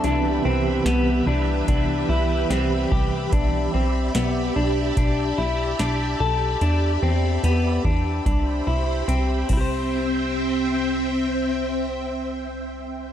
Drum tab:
CC |--------|--------|-------x|--------|
HH |x-x-x-x-|x-x-x-x-|x-x-x-x-|--------|
SD |--o---o-|--o---o-|--------|--------|
BD |----o--o|o---o---|---oo--o|--------|